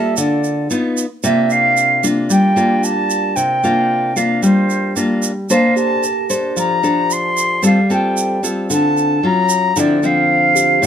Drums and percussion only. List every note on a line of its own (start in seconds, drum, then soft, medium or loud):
0.17 shaker medium
0.44 shaker soft
0.71 shaker medium
0.97 shaker medium
1.24 shaker medium
1.50 shaker soft
1.77 shaker soft
2.04 shaker medium
2.30 shaker medium
2.57 shaker soft
2.84 shaker medium
3.10 shaker medium
3.37 shaker medium
3.64 shaker soft
4.17 shaker medium
4.43 shaker medium
4.70 shaker soft
4.96 shaker medium
5.23 shaker medium
5.50 shaker medium
5.77 shaker soft
6.03 shaker soft
6.30 shaker medium
6.57 shaker medium
6.84 shaker soft
7.11 shaker medium
7.37 shaker medium
7.63 shaker medium
7.90 shaker soft
8.17 shaker medium
8.44 shaker medium
8.70 shaker medium
8.97 shaker soft
9.49 shaker medium
9.76 shaker medium
10.03 shaker soft
10.56 shaker medium
10.83 shaker medium